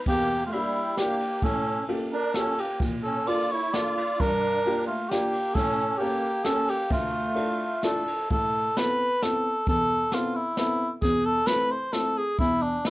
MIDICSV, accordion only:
0, 0, Header, 1, 2, 480
1, 0, Start_track
1, 0, Key_signature, -1, "minor"
1, 0, Tempo, 456274
1, 72, Time_signature, 3, 2, 24, 8
1, 7272, Tempo, 466926
1, 8720, Key_signature, 0, "minor"
1, 9192, Tempo, 452830
1, 13559, End_track
2, 0, Start_track
2, 0, Title_t, "Accordion"
2, 0, Program_c, 0, 21
2, 83, Note_on_c, 0, 58, 84
2, 456, Note_off_c, 0, 58, 0
2, 484, Note_on_c, 0, 57, 59
2, 548, Note_off_c, 0, 57, 0
2, 557, Note_on_c, 0, 55, 84
2, 1031, Note_off_c, 0, 55, 0
2, 1039, Note_on_c, 0, 58, 66
2, 1476, Note_off_c, 0, 58, 0
2, 1497, Note_on_c, 0, 61, 76
2, 1937, Note_off_c, 0, 61, 0
2, 2237, Note_on_c, 0, 62, 90
2, 2454, Note_off_c, 0, 62, 0
2, 2496, Note_on_c, 0, 61, 81
2, 2728, Note_off_c, 0, 61, 0
2, 2743, Note_on_c, 0, 58, 59
2, 2967, Note_off_c, 0, 58, 0
2, 3204, Note_on_c, 0, 61, 81
2, 3426, Note_off_c, 0, 61, 0
2, 3437, Note_on_c, 0, 65, 90
2, 3689, Note_off_c, 0, 65, 0
2, 3705, Note_on_c, 0, 64, 89
2, 3934, Note_on_c, 0, 65, 81
2, 3940, Note_off_c, 0, 64, 0
2, 4400, Note_on_c, 0, 62, 88
2, 4419, Note_off_c, 0, 65, 0
2, 5130, Note_off_c, 0, 62, 0
2, 5132, Note_on_c, 0, 57, 65
2, 5352, Note_off_c, 0, 57, 0
2, 5368, Note_on_c, 0, 58, 69
2, 5838, Note_on_c, 0, 61, 85
2, 5841, Note_off_c, 0, 58, 0
2, 6310, Note_on_c, 0, 58, 88
2, 6314, Note_off_c, 0, 61, 0
2, 6786, Note_on_c, 0, 61, 76
2, 6791, Note_off_c, 0, 58, 0
2, 7027, Note_on_c, 0, 58, 67
2, 7034, Note_off_c, 0, 61, 0
2, 7250, Note_on_c, 0, 57, 79
2, 7268, Note_off_c, 0, 58, 0
2, 8430, Note_off_c, 0, 57, 0
2, 13559, End_track
0, 0, End_of_file